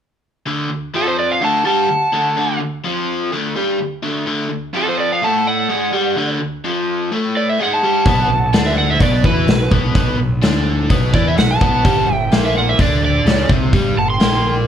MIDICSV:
0, 0, Header, 1, 6, 480
1, 0, Start_track
1, 0, Tempo, 473934
1, 469, Time_signature, 4, 2, 24, 8
1, 14859, End_track
2, 0, Start_track
2, 0, Title_t, "Electric slide guitar"
2, 0, Program_c, 0, 29
2, 972, Note_on_c, 0, 69, 81
2, 1078, Note_off_c, 0, 69, 0
2, 1091, Note_on_c, 0, 72, 76
2, 1198, Note_off_c, 0, 72, 0
2, 1208, Note_on_c, 0, 74, 80
2, 1317, Note_off_c, 0, 74, 0
2, 1332, Note_on_c, 0, 77, 85
2, 1439, Note_off_c, 0, 77, 0
2, 1461, Note_on_c, 0, 81, 86
2, 1680, Note_off_c, 0, 81, 0
2, 1693, Note_on_c, 0, 81, 82
2, 2617, Note_off_c, 0, 81, 0
2, 4829, Note_on_c, 0, 69, 76
2, 4932, Note_off_c, 0, 69, 0
2, 4949, Note_on_c, 0, 72, 84
2, 5052, Note_off_c, 0, 72, 0
2, 5064, Note_on_c, 0, 74, 89
2, 5170, Note_off_c, 0, 74, 0
2, 5191, Note_on_c, 0, 77, 70
2, 5293, Note_off_c, 0, 77, 0
2, 5310, Note_on_c, 0, 81, 83
2, 5529, Note_off_c, 0, 81, 0
2, 5540, Note_on_c, 0, 78, 83
2, 6464, Note_off_c, 0, 78, 0
2, 7461, Note_on_c, 0, 74, 78
2, 7570, Note_off_c, 0, 74, 0
2, 7590, Note_on_c, 0, 76, 77
2, 7694, Note_off_c, 0, 76, 0
2, 7725, Note_on_c, 0, 78, 82
2, 7822, Note_off_c, 0, 78, 0
2, 7834, Note_on_c, 0, 81, 78
2, 8751, Note_off_c, 0, 81, 0
2, 8775, Note_on_c, 0, 76, 81
2, 8886, Note_off_c, 0, 76, 0
2, 8892, Note_on_c, 0, 78, 78
2, 9005, Note_off_c, 0, 78, 0
2, 9015, Note_on_c, 0, 76, 73
2, 9126, Note_off_c, 0, 76, 0
2, 9137, Note_on_c, 0, 74, 80
2, 9363, Note_off_c, 0, 74, 0
2, 9370, Note_on_c, 0, 71, 92
2, 9832, Note_off_c, 0, 71, 0
2, 11294, Note_on_c, 0, 74, 83
2, 11403, Note_off_c, 0, 74, 0
2, 11422, Note_on_c, 0, 76, 72
2, 11525, Note_off_c, 0, 76, 0
2, 11529, Note_on_c, 0, 78, 80
2, 11640, Note_off_c, 0, 78, 0
2, 11656, Note_on_c, 0, 81, 86
2, 12294, Note_off_c, 0, 81, 0
2, 12294, Note_on_c, 0, 79, 86
2, 12575, Note_off_c, 0, 79, 0
2, 12611, Note_on_c, 0, 76, 85
2, 12719, Note_off_c, 0, 76, 0
2, 12737, Note_on_c, 0, 78, 84
2, 12842, Note_off_c, 0, 78, 0
2, 12853, Note_on_c, 0, 76, 82
2, 12959, Note_off_c, 0, 76, 0
2, 12979, Note_on_c, 0, 74, 78
2, 13198, Note_off_c, 0, 74, 0
2, 13217, Note_on_c, 0, 74, 92
2, 13668, Note_off_c, 0, 74, 0
2, 14166, Note_on_c, 0, 81, 97
2, 14272, Note_off_c, 0, 81, 0
2, 14283, Note_on_c, 0, 84, 74
2, 14737, Note_off_c, 0, 84, 0
2, 14859, End_track
3, 0, Start_track
3, 0, Title_t, "Lead electric guitar"
3, 0, Program_c, 1, 29
3, 963, Note_on_c, 1, 66, 68
3, 1075, Note_off_c, 1, 66, 0
3, 1075, Note_on_c, 1, 69, 64
3, 1194, Note_off_c, 1, 69, 0
3, 1194, Note_on_c, 1, 71, 71
3, 1315, Note_off_c, 1, 71, 0
3, 1315, Note_on_c, 1, 72, 62
3, 1419, Note_on_c, 1, 78, 73
3, 1434, Note_off_c, 1, 72, 0
3, 1649, Note_off_c, 1, 78, 0
3, 1665, Note_on_c, 1, 78, 66
3, 2591, Note_off_c, 1, 78, 0
3, 4808, Note_on_c, 1, 66, 64
3, 4932, Note_off_c, 1, 66, 0
3, 4932, Note_on_c, 1, 69, 63
3, 5047, Note_off_c, 1, 69, 0
3, 5067, Note_on_c, 1, 71, 74
3, 5167, Note_off_c, 1, 71, 0
3, 5192, Note_on_c, 1, 72, 63
3, 5290, Note_off_c, 1, 72, 0
3, 5296, Note_on_c, 1, 78, 77
3, 5513, Note_off_c, 1, 78, 0
3, 5541, Note_on_c, 1, 74, 73
3, 6453, Note_off_c, 1, 74, 0
3, 7459, Note_on_c, 1, 71, 65
3, 7597, Note_off_c, 1, 71, 0
3, 7597, Note_on_c, 1, 72, 69
3, 7701, Note_off_c, 1, 72, 0
3, 7713, Note_on_c, 1, 74, 55
3, 7812, Note_off_c, 1, 74, 0
3, 7818, Note_on_c, 1, 78, 66
3, 8731, Note_off_c, 1, 78, 0
3, 8780, Note_on_c, 1, 72, 66
3, 8885, Note_off_c, 1, 72, 0
3, 8904, Note_on_c, 1, 74, 69
3, 9007, Note_off_c, 1, 74, 0
3, 9030, Note_on_c, 1, 72, 60
3, 9130, Note_off_c, 1, 72, 0
3, 9135, Note_on_c, 1, 71, 70
3, 9353, Note_off_c, 1, 71, 0
3, 9368, Note_on_c, 1, 66, 71
3, 9812, Note_off_c, 1, 66, 0
3, 11317, Note_on_c, 1, 71, 69
3, 11415, Note_off_c, 1, 71, 0
3, 11415, Note_on_c, 1, 72, 70
3, 11539, Note_off_c, 1, 72, 0
3, 11539, Note_on_c, 1, 71, 69
3, 11649, Note_off_c, 1, 71, 0
3, 11665, Note_on_c, 1, 78, 72
3, 12293, Note_off_c, 1, 78, 0
3, 12293, Note_on_c, 1, 76, 72
3, 12568, Note_off_c, 1, 76, 0
3, 12621, Note_on_c, 1, 72, 67
3, 12720, Note_off_c, 1, 72, 0
3, 12739, Note_on_c, 1, 74, 77
3, 12846, Note_off_c, 1, 74, 0
3, 12846, Note_on_c, 1, 72, 67
3, 12956, Note_on_c, 1, 67, 74
3, 12959, Note_off_c, 1, 72, 0
3, 13177, Note_off_c, 1, 67, 0
3, 13189, Note_on_c, 1, 67, 67
3, 13635, Note_off_c, 1, 67, 0
3, 14163, Note_on_c, 1, 78, 79
3, 14266, Note_off_c, 1, 78, 0
3, 14282, Note_on_c, 1, 79, 59
3, 14718, Note_off_c, 1, 79, 0
3, 14859, End_track
4, 0, Start_track
4, 0, Title_t, "Overdriven electric guitar"
4, 0, Program_c, 2, 29
4, 465, Note_on_c, 2, 38, 71
4, 473, Note_on_c, 2, 50, 87
4, 694, Note_off_c, 2, 38, 0
4, 705, Note_off_c, 2, 50, 0
4, 706, Note_on_c, 2, 38, 69
4, 900, Note_off_c, 2, 38, 0
4, 951, Note_on_c, 2, 41, 88
4, 958, Note_on_c, 2, 53, 99
4, 1425, Note_off_c, 2, 41, 0
4, 1428, Note_off_c, 2, 53, 0
4, 1430, Note_on_c, 2, 38, 82
4, 1438, Note_on_c, 2, 50, 85
4, 1660, Note_off_c, 2, 38, 0
4, 1664, Note_on_c, 2, 43, 75
4, 1667, Note_off_c, 2, 50, 0
4, 1671, Note_on_c, 2, 55, 98
4, 1902, Note_off_c, 2, 43, 0
4, 1905, Note_off_c, 2, 55, 0
4, 1915, Note_on_c, 2, 38, 64
4, 2107, Note_off_c, 2, 38, 0
4, 2150, Note_on_c, 2, 38, 75
4, 2159, Note_on_c, 2, 50, 93
4, 2379, Note_off_c, 2, 38, 0
4, 2388, Note_off_c, 2, 50, 0
4, 2392, Note_on_c, 2, 38, 82
4, 2400, Note_on_c, 2, 50, 90
4, 2623, Note_off_c, 2, 38, 0
4, 2631, Note_off_c, 2, 50, 0
4, 2635, Note_on_c, 2, 38, 68
4, 2828, Note_off_c, 2, 38, 0
4, 2877, Note_on_c, 2, 41, 89
4, 2884, Note_on_c, 2, 53, 103
4, 3351, Note_off_c, 2, 41, 0
4, 3354, Note_off_c, 2, 53, 0
4, 3362, Note_on_c, 2, 38, 92
4, 3367, Note_on_c, 2, 50, 98
4, 3593, Note_off_c, 2, 38, 0
4, 3595, Note_off_c, 2, 50, 0
4, 3602, Note_on_c, 2, 43, 82
4, 3611, Note_on_c, 2, 55, 97
4, 3834, Note_off_c, 2, 43, 0
4, 3838, Note_off_c, 2, 55, 0
4, 3841, Note_on_c, 2, 38, 60
4, 4032, Note_off_c, 2, 38, 0
4, 4076, Note_on_c, 2, 38, 85
4, 4083, Note_on_c, 2, 50, 86
4, 4302, Note_off_c, 2, 38, 0
4, 4311, Note_off_c, 2, 50, 0
4, 4314, Note_on_c, 2, 38, 73
4, 4323, Note_on_c, 2, 50, 86
4, 4547, Note_off_c, 2, 38, 0
4, 4555, Note_off_c, 2, 50, 0
4, 4559, Note_on_c, 2, 38, 63
4, 4752, Note_off_c, 2, 38, 0
4, 4796, Note_on_c, 2, 41, 100
4, 4806, Note_on_c, 2, 53, 101
4, 5272, Note_off_c, 2, 41, 0
4, 5277, Note_off_c, 2, 53, 0
4, 5287, Note_on_c, 2, 45, 91
4, 5295, Note_on_c, 2, 57, 93
4, 5758, Note_off_c, 2, 45, 0
4, 5762, Note_off_c, 2, 57, 0
4, 5763, Note_on_c, 2, 44, 80
4, 5774, Note_on_c, 2, 56, 87
4, 5996, Note_off_c, 2, 44, 0
4, 6000, Note_on_c, 2, 43, 88
4, 6002, Note_off_c, 2, 56, 0
4, 6007, Note_on_c, 2, 55, 84
4, 6235, Note_off_c, 2, 43, 0
4, 6238, Note_off_c, 2, 55, 0
4, 6243, Note_on_c, 2, 38, 74
4, 6251, Note_on_c, 2, 50, 87
4, 6474, Note_off_c, 2, 38, 0
4, 6480, Note_off_c, 2, 50, 0
4, 6486, Note_on_c, 2, 38, 65
4, 6677, Note_off_c, 2, 38, 0
4, 6731, Note_on_c, 2, 41, 83
4, 6736, Note_on_c, 2, 53, 92
4, 7201, Note_off_c, 2, 41, 0
4, 7203, Note_off_c, 2, 53, 0
4, 7209, Note_on_c, 2, 45, 85
4, 7215, Note_on_c, 2, 57, 97
4, 7680, Note_off_c, 2, 45, 0
4, 7683, Note_off_c, 2, 57, 0
4, 7693, Note_on_c, 2, 44, 79
4, 7701, Note_on_c, 2, 56, 82
4, 7922, Note_off_c, 2, 44, 0
4, 7926, Note_off_c, 2, 56, 0
4, 7933, Note_on_c, 2, 43, 81
4, 7940, Note_on_c, 2, 55, 88
4, 8161, Note_off_c, 2, 43, 0
4, 8165, Note_off_c, 2, 55, 0
4, 8165, Note_on_c, 2, 47, 81
4, 8175, Note_on_c, 2, 59, 86
4, 8393, Note_off_c, 2, 47, 0
4, 8403, Note_off_c, 2, 59, 0
4, 8405, Note_on_c, 2, 47, 69
4, 8597, Note_off_c, 2, 47, 0
4, 8641, Note_on_c, 2, 50, 84
4, 8649, Note_on_c, 2, 62, 104
4, 9115, Note_off_c, 2, 50, 0
4, 9119, Note_off_c, 2, 62, 0
4, 9121, Note_on_c, 2, 47, 86
4, 9131, Note_on_c, 2, 59, 93
4, 9355, Note_off_c, 2, 47, 0
4, 9358, Note_on_c, 2, 52, 89
4, 9360, Note_off_c, 2, 59, 0
4, 9367, Note_on_c, 2, 64, 90
4, 9594, Note_off_c, 2, 52, 0
4, 9598, Note_off_c, 2, 64, 0
4, 9601, Note_on_c, 2, 47, 61
4, 9794, Note_off_c, 2, 47, 0
4, 9837, Note_on_c, 2, 47, 81
4, 9844, Note_on_c, 2, 59, 86
4, 10062, Note_off_c, 2, 47, 0
4, 10073, Note_off_c, 2, 59, 0
4, 10075, Note_on_c, 2, 47, 80
4, 10085, Note_on_c, 2, 59, 98
4, 10301, Note_off_c, 2, 47, 0
4, 10313, Note_on_c, 2, 47, 65
4, 10316, Note_off_c, 2, 59, 0
4, 10509, Note_off_c, 2, 47, 0
4, 10552, Note_on_c, 2, 50, 90
4, 10558, Note_on_c, 2, 62, 100
4, 11028, Note_off_c, 2, 50, 0
4, 11031, Note_off_c, 2, 62, 0
4, 11034, Note_on_c, 2, 47, 88
4, 11040, Note_on_c, 2, 59, 99
4, 11269, Note_off_c, 2, 47, 0
4, 11273, Note_off_c, 2, 59, 0
4, 11274, Note_on_c, 2, 52, 75
4, 11279, Note_on_c, 2, 64, 95
4, 11509, Note_off_c, 2, 52, 0
4, 11512, Note_off_c, 2, 64, 0
4, 11520, Note_on_c, 2, 47, 60
4, 11711, Note_off_c, 2, 47, 0
4, 11756, Note_on_c, 2, 47, 82
4, 11763, Note_on_c, 2, 59, 93
4, 11989, Note_off_c, 2, 47, 0
4, 11992, Note_off_c, 2, 59, 0
4, 11994, Note_on_c, 2, 43, 81
4, 12003, Note_on_c, 2, 55, 100
4, 12223, Note_off_c, 2, 43, 0
4, 12232, Note_off_c, 2, 55, 0
4, 12235, Note_on_c, 2, 43, 73
4, 12427, Note_off_c, 2, 43, 0
4, 12475, Note_on_c, 2, 46, 94
4, 12482, Note_on_c, 2, 58, 90
4, 12946, Note_off_c, 2, 46, 0
4, 12950, Note_off_c, 2, 58, 0
4, 12953, Note_on_c, 2, 50, 77
4, 12961, Note_on_c, 2, 62, 96
4, 13424, Note_off_c, 2, 50, 0
4, 13428, Note_off_c, 2, 62, 0
4, 13430, Note_on_c, 2, 49, 85
4, 13439, Note_on_c, 2, 61, 90
4, 13662, Note_off_c, 2, 49, 0
4, 13666, Note_off_c, 2, 61, 0
4, 13669, Note_on_c, 2, 48, 91
4, 13679, Note_on_c, 2, 60, 84
4, 13898, Note_off_c, 2, 48, 0
4, 13902, Note_on_c, 2, 43, 87
4, 13906, Note_off_c, 2, 60, 0
4, 13910, Note_on_c, 2, 55, 86
4, 14137, Note_off_c, 2, 43, 0
4, 14141, Note_off_c, 2, 55, 0
4, 14149, Note_on_c, 2, 43, 65
4, 14339, Note_off_c, 2, 43, 0
4, 14382, Note_on_c, 2, 46, 91
4, 14390, Note_on_c, 2, 58, 98
4, 14853, Note_off_c, 2, 46, 0
4, 14857, Note_off_c, 2, 58, 0
4, 14859, End_track
5, 0, Start_track
5, 0, Title_t, "Fingered electric bass"
5, 0, Program_c, 3, 33
5, 8159, Note_on_c, 3, 35, 76
5, 8385, Note_off_c, 3, 35, 0
5, 8391, Note_on_c, 3, 35, 68
5, 8620, Note_off_c, 3, 35, 0
5, 8639, Note_on_c, 3, 38, 80
5, 9088, Note_off_c, 3, 38, 0
5, 9119, Note_on_c, 3, 35, 91
5, 9344, Note_off_c, 3, 35, 0
5, 9358, Note_on_c, 3, 40, 89
5, 9584, Note_off_c, 3, 40, 0
5, 9597, Note_on_c, 3, 35, 72
5, 9823, Note_off_c, 3, 35, 0
5, 9841, Note_on_c, 3, 35, 88
5, 10065, Note_off_c, 3, 35, 0
5, 10076, Note_on_c, 3, 35, 87
5, 10302, Note_off_c, 3, 35, 0
5, 10325, Note_on_c, 3, 35, 65
5, 10546, Note_off_c, 3, 35, 0
5, 10567, Note_on_c, 3, 38, 88
5, 11010, Note_off_c, 3, 38, 0
5, 11040, Note_on_c, 3, 35, 87
5, 11263, Note_off_c, 3, 35, 0
5, 11279, Note_on_c, 3, 40, 86
5, 11502, Note_off_c, 3, 40, 0
5, 11524, Note_on_c, 3, 35, 82
5, 11744, Note_off_c, 3, 35, 0
5, 11756, Note_on_c, 3, 35, 82
5, 11979, Note_off_c, 3, 35, 0
5, 11998, Note_on_c, 3, 31, 90
5, 12220, Note_off_c, 3, 31, 0
5, 12246, Note_on_c, 3, 31, 63
5, 12464, Note_off_c, 3, 31, 0
5, 12486, Note_on_c, 3, 34, 82
5, 12926, Note_off_c, 3, 34, 0
5, 12955, Note_on_c, 3, 38, 89
5, 13398, Note_off_c, 3, 38, 0
5, 13425, Note_on_c, 3, 37, 98
5, 13650, Note_off_c, 3, 37, 0
5, 13669, Note_on_c, 3, 36, 83
5, 13891, Note_off_c, 3, 36, 0
5, 13904, Note_on_c, 3, 31, 91
5, 14128, Note_off_c, 3, 31, 0
5, 14143, Note_on_c, 3, 31, 61
5, 14366, Note_off_c, 3, 31, 0
5, 14381, Note_on_c, 3, 34, 85
5, 14826, Note_off_c, 3, 34, 0
5, 14859, End_track
6, 0, Start_track
6, 0, Title_t, "Drums"
6, 8160, Note_on_c, 9, 36, 98
6, 8164, Note_on_c, 9, 46, 44
6, 8262, Note_off_c, 9, 36, 0
6, 8265, Note_off_c, 9, 46, 0
6, 8641, Note_on_c, 9, 46, 44
6, 8652, Note_on_c, 9, 38, 101
6, 8743, Note_off_c, 9, 46, 0
6, 8753, Note_off_c, 9, 38, 0
6, 9120, Note_on_c, 9, 36, 94
6, 9122, Note_on_c, 9, 46, 49
6, 9221, Note_off_c, 9, 36, 0
6, 9224, Note_off_c, 9, 46, 0
6, 9360, Note_on_c, 9, 36, 100
6, 9461, Note_off_c, 9, 36, 0
6, 9600, Note_on_c, 9, 46, 53
6, 9610, Note_on_c, 9, 38, 99
6, 9701, Note_off_c, 9, 46, 0
6, 9711, Note_off_c, 9, 38, 0
6, 9839, Note_on_c, 9, 36, 96
6, 9941, Note_off_c, 9, 36, 0
6, 10079, Note_on_c, 9, 36, 94
6, 10079, Note_on_c, 9, 46, 49
6, 10180, Note_off_c, 9, 36, 0
6, 10180, Note_off_c, 9, 46, 0
6, 10560, Note_on_c, 9, 46, 44
6, 10570, Note_on_c, 9, 38, 102
6, 10661, Note_off_c, 9, 46, 0
6, 10671, Note_off_c, 9, 38, 0
6, 11041, Note_on_c, 9, 36, 99
6, 11042, Note_on_c, 9, 46, 48
6, 11143, Note_off_c, 9, 36, 0
6, 11143, Note_off_c, 9, 46, 0
6, 11279, Note_on_c, 9, 36, 95
6, 11381, Note_off_c, 9, 36, 0
6, 11522, Note_on_c, 9, 46, 50
6, 11532, Note_on_c, 9, 38, 100
6, 11623, Note_off_c, 9, 46, 0
6, 11634, Note_off_c, 9, 38, 0
6, 11760, Note_on_c, 9, 36, 97
6, 11862, Note_off_c, 9, 36, 0
6, 12000, Note_on_c, 9, 36, 98
6, 12008, Note_on_c, 9, 46, 47
6, 12101, Note_off_c, 9, 36, 0
6, 12110, Note_off_c, 9, 46, 0
6, 12475, Note_on_c, 9, 46, 47
6, 12485, Note_on_c, 9, 38, 102
6, 12576, Note_off_c, 9, 46, 0
6, 12586, Note_off_c, 9, 38, 0
6, 12954, Note_on_c, 9, 36, 105
6, 12958, Note_on_c, 9, 46, 51
6, 13055, Note_off_c, 9, 36, 0
6, 13059, Note_off_c, 9, 46, 0
6, 13436, Note_on_c, 9, 46, 48
6, 13446, Note_on_c, 9, 38, 101
6, 13537, Note_off_c, 9, 46, 0
6, 13547, Note_off_c, 9, 38, 0
6, 13667, Note_on_c, 9, 36, 100
6, 13769, Note_off_c, 9, 36, 0
6, 13906, Note_on_c, 9, 36, 93
6, 13913, Note_on_c, 9, 46, 53
6, 14008, Note_off_c, 9, 36, 0
6, 14014, Note_off_c, 9, 46, 0
6, 14384, Note_on_c, 9, 46, 44
6, 14394, Note_on_c, 9, 38, 96
6, 14485, Note_off_c, 9, 46, 0
6, 14495, Note_off_c, 9, 38, 0
6, 14859, End_track
0, 0, End_of_file